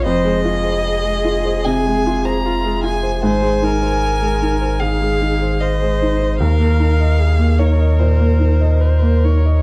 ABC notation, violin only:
X:1
M:4/4
L:1/16
Q:1/4=76
K:Fm
V:1 name="Violin"
e8 a3 b3 a2 | a8 f4 e4 | f6 d2 c4 B4 |]